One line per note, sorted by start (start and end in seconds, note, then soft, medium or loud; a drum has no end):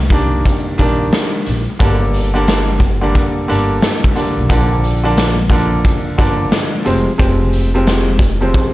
0.00 0.42 C2 loud
0.10 0.75 D#3 medium
0.10 0.75 G3 medium
0.10 0.75 A#3 medium
0.10 0.75 D4 loud
0.10 kick medium
0.10 closed hi-hat medium
0.45 kick medium
0.45 closed hi-hat medium
0.78 1.08 A#1 medium
0.78 1.58 D#3 loud
0.78 1.59 G3 medium
0.78 1.59 A#3 medium
0.78 1.59 D4 loud
0.78 kick medium
0.78 closed hi-hat medium
1.13 snare loud
1.13 closed hi-hat medium
1.46 1.65 A#1 loud
1.46 closed hi-hat medium
1.79 3.11 G1 loud
1.79 2.29 D3 loud
1.79 2.29 G3 medium
1.79 2.30 A#3 medium
1.79 2.30 D4 loud
1.79 kick loud
1.79 closed hi-hat loud
2.14 closed hi-hat medium
2.34 2.78 D3 medium
2.34 2.78 G3 medium
2.34 2.78 A#3 medium
2.34 2.78 D4 loud
2.48 snare loud
2.48 closed hi-hat medium
2.80 kick medium
2.80 closed hi-hat medium
3.01 3.45 D3 medium
3.01 3.46 G3 medium
3.01 3.46 A#3 medium
3.01 3.46 D4 loud
3.15 kick loud
3.15 closed hi-hat medium
3.48 3.78 G1 medium
3.48 4.12 D3 medium
3.48 4.12 G3 medium
3.48 4.12 A#3 medium
3.48 4.12 D4 loud
3.48 closed hi-hat medium
3.82 snare loud
3.82 closed hi-hat medium
4.04 kick medium
4.16 4.47 D3 medium
4.16 4.48 G3 medium
4.16 4.48 A#3 medium
4.16 4.48 D4 medium
4.16 closed hi-hat medium
4.37 4.48 B1 medium
4.49 5.81 A#1 loud
4.49 4.99 D3 loud
4.49 4.99 F3 medium
4.49 5.00 A#3 medium
4.49 5.00 D4 loud
4.49 kick loud
4.49 closed hi-hat medium
4.84 closed hi-hat medium
5.04 5.34 D3 medium
5.04 5.34 F3 medium
5.04 5.35 A#3 medium
5.04 5.35 D4 loud
5.17 snare loud
5.17 closed hi-hat medium
5.50 6.14 D3 loud
5.50 6.14 F3 medium
5.50 6.14 A#3 medium
5.50 6.15 D4 loud
5.50 kick medium
5.50 closed hi-hat medium
5.85 kick loud
5.85 closed hi-hat medium
6.18 6.48 G1 medium
6.18 6.86 D3 loud
6.18 6.83 F3 medium
6.18 6.86 A#3 medium
6.18 6.86 D4 loud
6.18 kick medium
6.18 closed hi-hat medium
6.52 snare loud
6.52 closed hi-hat medium
6.84 7.04 F1 loud
6.84 7.08 C3 medium
6.84 7.08 F3 medium
6.84 7.09 G#3 medium
6.84 7.09 C4 loud
6.84 closed hi-hat medium
7.18 8.50 F1 loud
7.18 7.68 C3 loud
7.18 7.68 F3 medium
7.18 7.69 G#3 medium
7.18 7.69 C4 loud
7.18 kick loud
7.18 closed hi-hat medium
7.53 closed hi-hat medium
7.74 8.18 C3 loud
7.74 8.18 F3 medium
7.74 8.18 G#3 medium
7.74 8.18 C4 loud
7.87 snare loud
7.87 closed hi-hat medium
8.19 kick medium
8.19 closed hi-hat medium
8.40 8.74 C3 medium
8.40 8.74 F3 medium
8.40 8.74 G#3 medium
8.40 8.74 C4 loud
8.54 kick loud
8.54 closed hi-hat medium